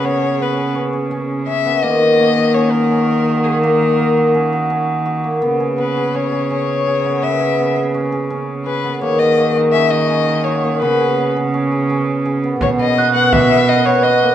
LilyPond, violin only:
\new Staff \with { instrumentName = "Violin" } { \time 5/4 \key dis \phrygian \tempo 4 = 167 cis''4 b'4 r2 e''4 | dis''2 cis''8 ais'2 gis'8 | ais'2 r2. | r4 b'4 cis''4 cis''2 |
e''4. r2 r8 b'4 | cis''8 dis''4 r8 e''8 dis''4. cis''4 | b'4. r2. r8 | cis''8 dis''4 fis''8 e''4 dis''8 cis''8 dis''4 | }